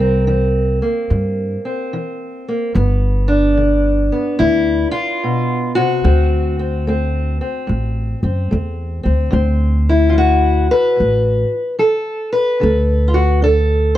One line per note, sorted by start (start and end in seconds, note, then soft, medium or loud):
0.00 0.79 C2 loud
0.00 0.21 C3 medium
0.00 0.81 A#3 soft
0.00 0.26 C4 medium
0.00 2.47 A#4 medium
0.27 1.04 E3 medium
0.27 1.64 C4 soft
0.82 2.47 A#3 soft
1.10 1.87 G2 medium
1.10 1.54 G2 medium
1.65 2.72 C4 soft
1.93 2.69 E3 medium
2.48 2.72 A#3 soft
2.75 4.09 G1 loud
2.75 3.51 G2 medium
2.75 4.11 B3 soft
3.28 5.21 D4 medium
3.57 4.34 D3 medium
4.12 6.01 B3 soft
4.39 4.84 D2 medium
4.39 5.16 G2 medium
4.39 4.91 E4 loud
4.91 5.75 F4 loud
5.24 5.77 B2 medium
5.75 6.05 C3 medium
5.75 9.33 F#4 loud
6.04 7.38 D2 loud
6.04 6.81 D3 medium
6.04 6.59 C4 soft
6.59 6.88 C4 soft
6.87 7.63 A3 medium
6.87 7.41 C4 soft
7.41 8.23 C4 soft
7.67 8.13 A1 medium
7.67 8.44 A2 medium
8.23 8.48 F#2 medium
8.23 9.03 C4 soft
8.51 9.01 E2 medium
8.51 9.27 A3 medium
9.03 9.31 D2 medium
9.03 9.32 C4 soft
9.31 10.67 D2 medium
9.31 10.08 D3 medium
9.31 12.63 C4 soft
9.89 10.70 E4 medium
10.09 10.91 F#3 medium
10.09 10.15 F4 medium
10.18 11.53 F#4 medium
10.71 11.79 B4 loud
10.96 11.73 A2 medium
11.00 11.43 A1 medium
11.79 12.56 F#3 medium
11.79 12.32 A4 medium
12.33 13.43 B4 medium
12.60 13.97 D2 medium
12.60 13.37 D3 medium
12.60 13.14 A4 soft
13.08 13.16 F4 medium
13.14 13.43 F#4 medium
13.42 13.98 D4 medium
13.42 13.98 A4 medium